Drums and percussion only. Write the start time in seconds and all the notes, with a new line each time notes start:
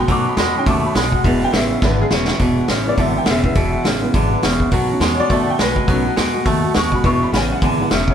0.08 kick, open hi-hat
0.37 snare, open hi-hat
0.66 kick, open hi-hat
0.95 snare, open hi-hat
1.12 kick
1.24 kick, open hi-hat
1.53 snare, open hi-hat
1.82 kick, snare
2.11 snare
2.28 snare
2.39 kick, open hi-hat
2.68 snare, open hi-hat
2.98 kick, open hi-hat
3.26 snare, open hi-hat
3.44 kick
3.55 kick, open hi-hat
3.85 snare, open hi-hat
4.14 kick, open hi-hat
4.43 snare, open hi-hat
4.60 kick
4.72 kick, open hi-hat
5.01 snare, open hi-hat
5.30 kick, open hi-hat
5.59 snare, open hi-hat
5.76 kick
5.88 kick, open hi-hat
6.17 snare, open hi-hat
6.46 kick, open hi-hat
6.74 snare, open hi-hat
6.92 kick
7.04 kick, open hi-hat
7.34 snare, open hi-hat
7.62 kick, open hi-hat
7.91 snare, open hi-hat
8.08 kick